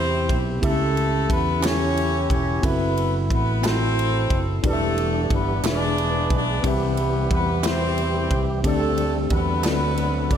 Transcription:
Already playing: fingered electric bass E2, tine electric piano C3 C4 E4 G4 B4 E5 G5 B5, horn section C4 E4 G4 C5
0.29 fingered electric bass B1, kick, ride
0.61 fingered electric bass C#2, tine electric piano C#3 B3 E4 G4 A4 E5, kick, ride
0.65 horn section A3 E4 A4, tine electric piano C#4
0.97 ride
1.30 fingered electric bass E2, horn section B3 B4, kick, ride
1.61 tine electric piano C#4 E4 G4 A4 C#5, clap, ride
1.66 horn section C#4 E4 G4 C#5, snare
1.97 ride
2.30 fingered electric bass E1, horn section C#4 C#5, kick, ride
2.62 fingered electric bass F#1, horn section B3 E4 B4, tine electric piano C4 E4 F#4 A4, kick, ride
2.66 tine electric piano E5
2.97 ride
3.30 fingered electric bass A1, horn section B3 B4, kick, ride
3.62 tine electric piano C4 E4 F#4 A4 B5, horn section C4 C5, snare, clap, ride
3.66 horn section E4 A4
3.99 ride
4.30 fingered electric bass F#1, kick, ride
4.63 fingered electric bass E1, tine electric piano E3 D4 E4 G4 B4, tonewheel organ E3 G3 B3 D4 F#4, kick, ride
4.67 horn section A3 D4 A4, tine electric piano D5
4.72 tonewheel organ G4, tine electric piano E5
4.98 ride
5.30 fingered electric bass G1, horn section B3 B4, kick, ride
5.63 fingered electric bass E1, tine electric piano E3 D4 E4 F#4 B4, tonewheel organ E3 G#3 B3 D4 F#4, snare, clap, ride
5.68 horn section D4 G#4 B4 D5, tonewheel organ G#4, tine electric piano E5
5.72 tine electric piano G#4
5.98 ride
6.30 fingered electric bass B1, horn section D4 D5, kick, ride
6.63 fingered electric bass C2, tine electric piano C3 C4 E4 G4 B4, tonewheel organ E3 G3 C4 G4, horn section E4 G4, kick, ride
6.67 horn section B3 B4, tine electric piano E5
6.97 ride
7.31 fingered electric bass E2, horn section B3 B4, kick, ride
7.62 tine electric piano C4 E4 G4 E5 B5, horn section C4 E4 G4 C5, snare, clap, ride
7.98 ride
8.31 fingered electric bass C2, kick, ride
8.63 fingered electric bass D2, tine electric piano D3 C4 D4 G4 A4 D5, tonewheel organ F#3 A3 C4 D4 A4, horn section A3 C4 A4, kick, ride
8.71 tonewheel organ G3
8.98 ride
9.30 fingered electric bass E2, horn section B3 F#4 B4, kick, ride
9.62 fingered electric bass D2, tine electric piano D3 C4 D4 F#4 A4 D5, tonewheel organ A4, snare, clap, ride
9.66 tonewheel organ F#3 A3 C4 D4
9.97 ride
10.31 fingered electric bass F#1, horn section D4 D5, kick, ride

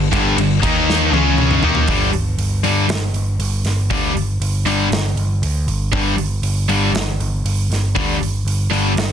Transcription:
Already playing: picked electric bass G1
0.12 picked electric bass G1, distorted electric guitar G2 D3 G3, kick, snare, ride
0.37 picked electric bass G1, distorted electric guitar G2 D3, ride
0.62 picked electric bass D#2, distorted electric guitar D#3 A#3 D#4, kick, ride
0.90 snare
1.12 picked electric bass C#2, distorted electric guitar C#3 G#3 C#4, high tom
1.38 mid tom
1.51 mid tom
1.63 picked electric bass D#2, distorted electric guitar D#3 A#3 D#4, floor tom
1.75 floor tom
1.88 picked electric bass G1, distorted electric guitar G2 D3 G3, kick, open hi-hat
2.13 picked electric bass G1, open hi-hat
2.38 picked electric bass G1, open hi-hat
2.63 picked electric bass G1, distorted electric guitar G2 D3 G3, open hi-hat
2.89 picked electric bass G1, snare, open hi-hat
3.13 picked electric bass G1, open hi-hat
3.39 picked electric bass G1, open hi-hat
3.65 picked electric bass G1, snare, open hi-hat
3.91 picked electric bass D2, distorted electric guitar G2 D3 G3, kick, open hi-hat
4.15 picked electric bass G1, open hi-hat
4.40 picked electric bass G1, open hi-hat
4.66 picked electric bass G1, distorted electric guitar G2 D3 G3, open hi-hat
4.91 picked electric bass G1, snare, open hi-hat
5.16 picked electric bass G1, open hi-hat
5.42 picked electric bass D2, open hi-hat
5.67 picked electric bass G1, open hi-hat
5.93 picked electric bass G1, distorted electric guitar G2 D3 G3, kick, open hi-hat
6.17 picked electric bass G1, open hi-hat
6.42 picked electric bass G1, open hi-hat
6.69 picked electric bass G1, distorted electric guitar G2 D3 G3, open hi-hat
6.93 picked electric bass G1, snare, open hi-hat
7.19 picked electric bass G1, open hi-hat
7.44 picked electric bass G1, open hi-hat
7.70 picked electric bass G1, snare, open hi-hat
7.95 picked electric bass D2, distorted electric guitar G2 D3 G3, kick, open hi-hat
8.20 picked electric bass G1, open hi-hat
8.45 picked electric bass G1, open hi-hat
8.70 picked electric bass G1, distorted electric guitar G2 D3 G3, open hi-hat
8.96 picked electric bass G1, snare, open hi-hat

